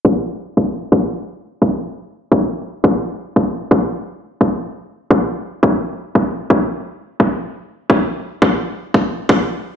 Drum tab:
BD |o--o-o--|-o---o--|o--o-o--|-o---o--|

BD |o--o-o--|-o---o--|o--o-o--|